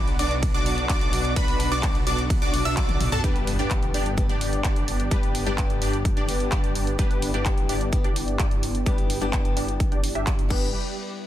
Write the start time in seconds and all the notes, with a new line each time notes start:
Already playing: B1 B3 D4 F#4
0.08 closed hi-hat
0.19 B1 D4 F#4 D5 D6, open hi-hat
0.31 closed hi-hat
0.43 kick, closed hi-hat, ride
0.54 B1 D4 F#4 D5 D6, closed hi-hat
0.66 open hi-hat
0.78 closed hi-hat
0.89 B1 D4 F#4 D5 D6, kick, clap, closed hi-hat, ride
1.01 closed hi-hat
1.13 open hi-hat
1.25 closed hi-hat
1.36 B1 D4 F#4 B4 B5, kick, closed hi-hat, ride
1.48 open hi-hat
1.60 open hi-hat
1.72 B1 D4 F#4 D5 D6, closed hi-hat
1.83 kick, clap, closed hi-hat, ride
1.95 closed hi-hat
2.07 B1 D4 F#4 D5 D6, open hi-hat
2.18 closed hi-hat
2.30 kick, closed hi-hat, ride
2.42 B1 D4 F#4 D5 D6, closed hi-hat
2.54 open hi-hat
2.65 B1 D4 F#4 E5 E6, closed hi-hat
2.77 B1 D4 F#4 D5 D6, kick, clap, closed hi-hat, high tom, ride
2.89 closed hi-hat, high tom
3.01 open hi-hat, mid tom
3.12 B1 D4 F#4 A4 A5, closed hi-hat, mid tom
3.23 G1 G2 G3 B3 D4 G4 B4, kick, closed hi-hat, impact
3.36 closed hi-hat
3.47 open hi-hat
3.58 G1 G2 G3 B3 D4 G4 D5, closed hi-hat
3.71 kick, clap, closed hi-hat
3.83 closed hi-hat
3.94 G1 D4 G4 D5, open hi-hat
4.06 closed hi-hat
4.17 G2 G3 B3 D4 G4, kick, closed hi-hat
4.29 G1 D4 G4 D5, closed hi-hat
4.41 open hi-hat
4.53 closed hi-hat
4.64 G1 D4 G4 D5, kick, clap, closed hi-hat
4.76 closed hi-hat
4.88 open hi-hat
5.00 closed hi-hat
5.11 G1 G2 G3 B3 D4 G4 B4, kick, closed hi-hat
5.23 closed hi-hat
5.35 open hi-hat
5.45 G1 G2 G3 B3 D4 G4 D5, closed hi-hat
5.58 kick, clap, closed hi-hat
5.70 closed hi-hat
5.82 G1 D4 G4 D5, open hi-hat
5.93 closed hi-hat
6.05 kick, closed hi-hat
6.17 G1 D4 G4 D5, closed hi-hat
6.27 G2 G3 B3 D4 G4, open hi-hat
6.40 closed hi-hat
6.52 G1 D4 G4 D5, kick, clap, closed hi-hat
6.64 closed hi-hat
6.75 open hi-hat
6.87 closed hi-hat
6.98 G1 G2 G3 B3 D4 E4 G4 B4, kick, closed hi-hat
7.11 closed hi-hat
7.22 open hi-hat
7.33 G1 G2 G3 B3 D4 G4 D5, closed hi-hat
7.46 kick, clap, closed hi-hat
7.58 closed hi-hat
7.69 G1 D4 G4 D5, open hi-hat
7.81 closed hi-hat
7.92 G2 G3 B3 D4 G4, kick, closed hi-hat
8.04 G1 D4 G4 D5, closed hi-hat
8.16 open hi-hat
8.28 closed hi-hat
8.39 G1 D4 G4 D5, kick, clap, closed hi-hat
8.51 closed hi-hat
8.63 open hi-hat
8.75 closed hi-hat
8.86 G1 G2 G3 B3 D4 G4 B4, kick, closed hi-hat
8.98 closed hi-hat
9.10 open hi-hat
9.20 G1 G2 G3 B3 D4 G4 D5, closed hi-hat
9.33 kick, clap, closed hi-hat
9.45 closed hi-hat
9.57 G1 D4 G4 D5, open hi-hat
9.68 closed hi-hat
9.80 kick, closed hi-hat
9.92 G1 D4 G4 D5, closed hi-hat
10.04 open hi-hat
10.15 G1 D4 G4 E5, closed hi-hat
10.27 G1 D4 G4 D5, kick, clap, closed hi-hat
10.39 closed hi-hat
10.49 G1 G3 B3 D4 G4 B4 D5, kick, crash